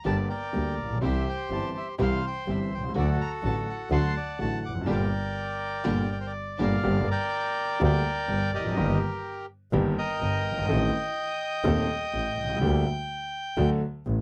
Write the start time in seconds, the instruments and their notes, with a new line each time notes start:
0.04 grand piano G1 G2 D3 G3 A#3 G4, double bass G1, string section A#3 D4 G4, bandoneon D5 A5
0.30 bandoneon A#4 D5 G5
0.52 grand piano D2 D3 G3 A#3 G4, double bass D2, string section A#3 D4 G4
0.78 double bass A#1
0.83 grand piano A1
0.90 grand piano A#1
0.96 grand piano B1
1.01 grand piano C2 C3 E3 G3 C4 G4, double bass C2, string section C4 E4 G4, bandoneon G4 C5 E5
1.29 bandoneon G5
1.49 double bass G1, grand piano G1 G2 E3 G3 C4 G4, string section C4 E4 G4, bandoneon A5
1.77 bandoneon E5
1.98 grand piano C2 C3 E3 G3 C4 G4, double bass C2, string section C4 E4 G4, bandoneon C5
2.02 bandoneon F5
2.27 bandoneon G5
2.47 double bass G1, grand piano G1 G2 E3 G3 C4 G4, string section C4 E4 G4, bandoneon E5
2.70 double bass C2
2.75 grand piano B1, bandoneon G5
2.83 grand piano C2
2.89 grand piano C#2
2.95 grand piano D2 D3 F#3 A3 F#4, double bass D2, string section A3 D4 F#4, bandoneon F#4 A4
2.99 bandoneon D5
3.21 bandoneon A#5
3.43 double bass A1, grand piano A1 A2 D3 F#3 A3 F#4, string section A3 D4 F#4, bandoneon A5
3.70 bandoneon F#5
3.90 double bass D2, grand piano D2 D3 F#3 A3 F#4, string section A3 D4 F#4, bandoneon F#5 A5 C6
4.17 bandoneon D5
4.39 grand piano A1 A2 D3 F#3 A3 F#4, double bass A1, string section A3 D4 F#4, bandoneon A5
4.65 double bass F1, bandoneon D6
4.69 grand piano E2
4.75 grand piano F2
4.81 grand piano F#2, bandoneon A5
4.86 double bass G1, grand piano A#2 D3 G3, string section A#3 D4 G4
4.91 bandoneon A#4 D5 G5
5.84 double bass G1, grand piano A#2 D3 G3, string section A#3 D4 G4
6.12 bandoneon D5
6.21 bandoneon C5
6.27 bandoneon D5
6.58 double bass G1, grand piano A#2 D3 G3, string section A#3 D4 G4, bandoneon D5
6.62 bandoneon A#4 F5
6.83 grand piano G1 G2 D3 G3 A#3 G4, double bass G1
7.10 bandoneon A#4 D5 G5
7.80 grand piano D2 D3 G3 A#3 G4, double bass D2, bandoneon A#4 D5
7.85 bandoneon G5
8.28 grand piano G1 G2, double bass G1
8.54 double bass F1, bandoneon G4 A#4 D#5
8.59 grand piano E2
8.66 grand piano F2
8.71 grand piano F#2
8.76 grand piano G1 G2 D#3 G3 A#3 G4, double bass G1
9.73 double bass G1, grand piano G1 G2 D#3 G3 A#3 G4
9.98 bandoneon A#4 D#5 G5
10.20 double bass G1, grand piano G1 G2
10.45 double bass G1
10.51 grand piano F#1
10.58 grand piano G1
10.64 grand piano G#1
10.69 grand piano A1 A2 D#3 A3 C4 A4, double bass A1
11.64 grand piano D#1 D#2 D#3 A3 C4 A4, double bass D#2
12.13 grand piano A1 A2, double bass A1
12.37 double bass C2
12.44 grand piano B1
12.49 grand piano C2
12.56 grand piano C#2
12.61 double bass D2, grand piano D2 D3 G3 A#3 G4
13.57 double bass D2, grand piano D2 D3 F#3 A3 F#4
14.06 grand piano A1 A2, double bass A1